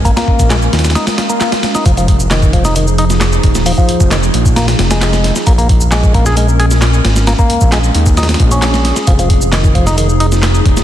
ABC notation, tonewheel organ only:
X:1
M:4/4
L:1/16
Q:1/4=133
K:Fm
V:1 name="Tonewheel organ"
B, B,3 A, z3 E z2 B, B, z2 E | F, F, z2 E,2 F, E E, z E z4 z | F, F,3 E, z3 B, z2 A,4 z | B, B, z2 A,2 B, A A, z A z4 z |
B, B,3 A, z3 E z2 D4 z | F, F, z2 E,2 F, E E, z E z4 z |]